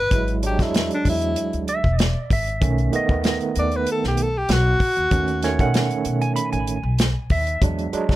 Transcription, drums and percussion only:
0.11 kick loud
0.11 closed hi-hat medium
0.28 closed hi-hat soft
0.43 closed hi-hat medium
0.59 kick medium
0.59 snare soft
0.59 closed hi-hat soft
0.74 snare loud
0.74 closed hi-hat medium
0.90 closed hi-hat soft
1.05 kick medium
1.05 open hi-hat medium
1.21 closed hi-hat soft
1.36 closed hi-hat medium
1.53 closed hi-hat soft
1.68 closed hi-hat medium
1.84 kick medium
1.99 snare loud
1.99 closed hi-hat medium
2.30 kick medium
2.30 open hi-hat medium
2.47 closed hi-hat soft
2.61 kick loud
2.61 closed hi-hat medium
2.78 closed hi-hat soft
2.93 closed hi-hat medium
3.09 kick medium
3.24 snare loud
3.24 closed hi-hat medium
3.40 closed hi-hat soft
3.55 closed hi-hat medium
3.71 closed hi-hat soft
3.86 closed hi-hat medium
4.04 snare soft
4.17 closed hi-hat medium
4.49 snare medium
4.49 closed hi-hat medium
4.80 kick medium
4.80 open hi-hat medium
4.96 closed hi-hat soft
5.11 kick loud
5.11 closed hi-hat medium
5.28 closed hi-hat soft
5.42 snare soft
5.42 closed hi-hat medium
5.59 kick medium
5.59 closed hi-hat soft
5.74 snare loud
5.74 closed hi-hat medium
5.90 closed hi-hat soft
6.05 closed hi-hat medium
6.21 closed hi-hat soft
6.36 closed hi-hat medium
6.52 closed hi-hat soft
6.67 closed hi-hat medium
6.98 snare loud
6.98 closed hi-hat medium
7.30 kick medium
7.30 open hi-hat medium
7.47 closed hi-hat soft
7.62 kick loud
7.62 closed hi-hat medium
7.78 closed hi-hat soft
7.93 closed hi-hat medium
8.09 kick medium
8.09 snare soft

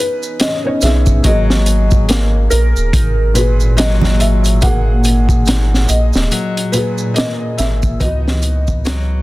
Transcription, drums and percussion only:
0.23 maracas medium
0.40 snare loud
0.40 closed hi-hat medium
0.40 maracas soft
0.81 snare soft
0.81 closed hi-hat medium
0.81 maracas medium
1.06 kick medium
1.06 maracas medium
1.24 kick loud
1.24 closed hi-hat medium
1.24 maracas soft
1.50 snare medium
1.66 closed hi-hat medium
1.66 maracas medium
1.91 kick medium
1.91 maracas medium
2.09 snare loud
2.09 closed hi-hat medium
2.09 maracas soft
2.51 closed hi-hat medium
2.51 maracas medium
2.76 maracas medium
2.93 kick loud
2.93 closed hi-hat medium
2.93 maracas soft
3.35 closed hi-hat medium
3.35 maracas medium
3.60 maracas soft
3.78 snare loud
3.78 closed hi-hat medium
3.78 maracas soft
4.01 snare soft
4.01 low conga medium
4.20 closed hi-hat medium
4.20 maracas medium
4.44 closed hi-hat soft
4.44 maracas medium
4.61 kick loud
4.61 closed hi-hat medium
4.61 maracas soft
5.04 closed hi-hat medium
5.04 maracas medium
5.29 kick loud
5.29 maracas medium
5.46 snare loud
5.46 closed hi-hat medium
5.46 maracas soft
5.74 snare soft
5.89 closed hi-hat medium
5.89 maracas medium
6.13 snare medium
6.13 maracas soft
6.31 closed hi-hat medium
6.31 maracas soft
6.57 closed hi-hat soft
6.73 closed hi-hat medium
6.73 maracas medium
6.98 maracas medium
7.16 snare loud
7.16 closed hi-hat medium
7.16 maracas soft
7.58 snare soft
7.58 closed hi-hat medium
7.58 maracas medium
7.82 kick medium
7.82 maracas soft
8.00 kick loud
8.00 closed hi-hat medium
8.00 maracas soft
8.28 snare medium
8.42 closed hi-hat medium
8.42 maracas medium
8.67 kick medium
8.67 maracas soft
8.85 snare loud
8.85 closed hi-hat medium
8.85 maracas soft

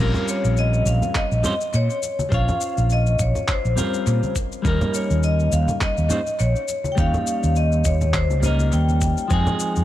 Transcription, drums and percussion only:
0.14 low conga medium
0.14 shaker soft
0.28 shaker medium
0.45 shaker soft
0.57 shaker soft
0.74 shaker soft
0.86 shaker medium
1.02 high conga medium
1.02 low conga medium
1.02 shaker soft
1.15 kick loud
1.15 clap medium
1.15 shaker soft
1.32 shaker soft
1.44 low conga medium
1.44 shaker medium
1.61 shaker soft
1.73 shaker soft
1.90 shaker soft
2.03 shaker medium
2.19 high conga medium
2.19 shaker soft
2.32 kick loud
2.32 shaker soft
2.48 low conga medium
2.48 shaker soft
2.61 shaker medium
2.78 shaker soft
2.90 shaker soft
3.06 shaker soft
3.19 kick medium
3.19 shaker medium
3.35 low conga medium
3.35 shaker soft
3.48 kick loud
3.48 clap medium
3.48 shaker soft
3.65 shaker soft
3.77 low conga medium
3.77 shaker medium
3.94 shaker soft
4.07 shaker soft
4.23 high conga medium
4.23 shaker soft
4.36 kick medium
4.36 shaker medium
4.52 shaker soft
4.65 kick loud
4.65 shaker soft
4.81 low conga medium
4.81 shaker soft
4.94 shaker medium
5.11 shaker soft
5.23 shaker soft
5.40 shaker soft
5.52 shaker medium
5.68 high conga medium
5.68 low conga medium
5.68 shaker soft
5.81 kick loud
5.81 clap medium
5.81 shaker soft
5.97 shaker soft
6.10 low conga medium
6.10 shaker medium
6.27 shaker soft
6.39 shaker soft
6.56 shaker soft
6.68 shaker medium
6.84 high conga medium
6.84 shaker soft
6.98 kick loud
6.98 shaker soft
7.14 low conga medium
7.14 shaker soft
7.27 shaker medium
7.43 shaker soft
7.56 shaker soft
7.72 shaker soft
7.85 kick medium
7.85 shaker medium
8.01 low conga medium
8.01 shaker soft
8.14 kick loud
8.14 clap medium
8.14 shaker soft
8.30 high conga medium
8.30 shaker soft
8.43 low conga medium
8.43 shaker medium
8.59 high conga medium
8.59 shaker soft
8.72 shaker soft
8.89 high conga medium
8.89 shaker soft
9.01 kick medium
9.01 shaker medium
9.18 shaker soft
9.30 kick loud
9.30 shaker soft
9.47 low conga medium
9.47 shaker soft
9.60 shaker medium
9.76 shaker soft

